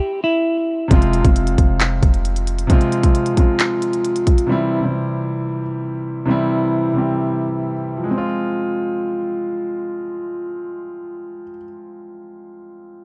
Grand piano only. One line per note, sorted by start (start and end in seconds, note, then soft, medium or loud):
0.88 1.19 C3 loud
0.88 1.19 F3 medium
0.88 1.20 G#3 medium
0.88 1.21 C4 medium
0.93 1.21 F4 loud
1.21 2.01 C3 medium
1.21 2.01 F3 medium
1.21 2.02 G#3 medium
1.21 2.03 C4 medium
1.27 2.03 F4 medium
2.67 3.27 C3 loud
2.67 3.28 F3 loud
2.67 3.28 G#3 medium
2.67 3.29 C4 medium
2.73 3.30 F4 loud
3.34 4.14 C3 medium
3.34 4.14 F3 medium
3.34 4.15 G#3 medium
3.34 4.16 C4 medium
3.40 4.16 F4 medium
4.47 4.77 C3 medium
4.47 4.78 E3 medium
4.47 4.78 G3 medium
4.47 4.79 C4 medium
4.52 4.80 E4 loud
4.80 5.59 C3 medium
4.80 5.60 E3 medium
4.80 5.61 G3 medium
4.80 5.61 C4 medium
4.85 5.62 E4 medium
6.26 6.85 C3 loud
6.26 6.86 E3 medium
6.26 6.87 G3 medium
6.26 6.87 C4 medium
6.31 6.88 E4 loud
6.93 7.72 C3 medium
6.93 7.73 E3 medium
6.93 7.73 G3 medium
6.93 7.74 C4 medium
6.98 7.75 G4 medium
7.97 11.43 F3 medium
8.04 11.50 G#3 medium
8.11 11.57 C4 medium
8.18 11.63 F4 medium